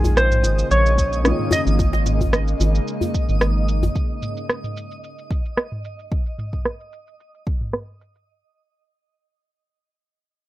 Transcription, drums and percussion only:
0.04 djembe tone, djembe bass, shaker
0.17 cross-stick, shaker
0.31 mid tom, shaker
0.43 djembe tone, shaker
0.59 shaker
0.71 shaker
0.86 shaker
0.98 kick, shaker
1.13 shaker
1.25 cross-stick, shaker
1.39 mid tom
1.51 djembe slap, djembe bass, shaker
1.67 shaker
1.79 kick, djembe tone, shaker
1.93 djembe slap, shaker
2.06 mid tom, djembe slap, shaker
2.21 kick, djembe tone, djembe bass, shaker
2.33 cross-stick, shaker
2.48 shaker
2.60 djembe tone, shaker
2.75 shaker
2.88 shaker
3.01 djembe bass, shaker
3.14 kick, djembe slap, shaker
3.29 mid tom, shaker
3.41 cross-stick, djembe slap, shaker
3.69 shaker
3.83 djembe slap, djembe bass, shaker
3.95 kick, shaker
4.22 mid tom, shaker
4.37 shaker
4.49 cross-stick, shaker
4.64 mid tom, shaker
4.77 shaker
4.91 shaker
5.04 shaker
5.18 shaker
5.31 kick, shaker
5.45 shaker
5.57 cross-stick, shaker
5.72 mid tom
5.85 shaker
5.99 shaker
6.12 kick, shaker
6.26 shaker
6.38 mid tom, shaker
6.53 kick, shaker
6.65 cross-stick, shaker
6.80 shaker
6.93 shaker
7.07 shaker
7.20 shaker
7.34 shaker
7.47 kick, shaker
7.61 mid tom, shaker
7.73 cross-stick, shaker
8.01 shaker
8.15 shaker

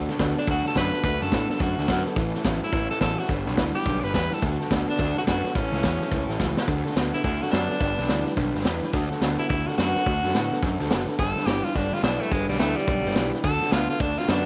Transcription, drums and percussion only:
0.09 snare
0.19 kick, snare, hi-hat pedal
0.37 snare
0.47 kick, snare
0.65 snare
0.76 kick, snare, hi-hat pedal
0.93 snare
1.03 kick, snare
1.21 snare
1.32 kick, snare, hi-hat pedal
1.49 snare
1.55 snare
1.60 kick, snare
1.78 snare
1.88 kick, snare, hi-hat pedal
2.06 snare
2.16 kick, snare
2.34 snare
2.45 kick, snare, hi-hat pedal
2.62 snare
2.73 kick, snare
2.90 snare
3.01 kick, snare, hi-hat pedal
3.19 snare
3.24 snare
3.29 kick, snare
3.47 snare
3.57 kick, snare, hi-hat pedal
3.75 snare
3.81 snare
3.86 kick, snare
4.04 snare
4.14 kick, snare, hi-hat pedal
4.32 snare
4.37 snare
4.42 kick, snare
4.61 snare
4.71 kick, snare, hi-hat pedal
4.89 snare
4.94 snare
4.99 kick, snare
5.17 snare
5.27 kick, snare, hi-hat pedal
5.45 snare
5.55 kick, snare
5.73 snare
5.83 kick, snare, hi-hat pedal
6.01 snare
6.11 kick, snare
6.29 snare
6.40 kick, snare, hi-hat pedal
6.57 snare
6.68 kick, snare
6.86 snare
6.91 snare
6.96 snare, hi-hat pedal
7.14 snare
7.24 kick, snare
7.42 snare
7.47 snare
7.53 snare, hi-hat pedal
7.70 snare
7.80 kick, snare
7.98 snare
8.04 snare
8.09 snare, hi-hat pedal
8.26 snare
8.37 kick, snare
8.55 snare
8.60 snare
8.65 snare, hi-hat pedal
8.83 snare
8.93 kick, snare
9.11 snare
9.22 snare, hi-hat pedal
9.39 snare
9.50 kick, snare
9.68 snare
9.78 snare, hi-hat pedal
9.96 snare
10.06 kick, snare
10.24 snare
10.29 snare
10.35 snare, hi-hat pedal
10.52 snare
10.63 kick, snare
10.80 snare
10.86 snare
10.91 snare, hi-hat pedal
11.08 snare
11.19 kick, snare
11.37 snare
11.47 snare, hi-hat pedal
11.65 snare
11.75 kick, snare
11.93 snare
11.99 snare
12.03 snare, hi-hat pedal
12.21 snare
12.31 kick, snare
12.49 snare
12.55 snare
12.60 snare, hi-hat pedal
12.77 snare
12.87 kick, snare
13.05 snare
13.11 snare
13.16 snare, hi-hat pedal
13.34 snare
13.44 kick, snare
13.61 snare
13.67 snare
13.72 snare, hi-hat pedal
13.89 snare
14.00 kick, snare
14.18 snare
14.28 snare, hi-hat pedal

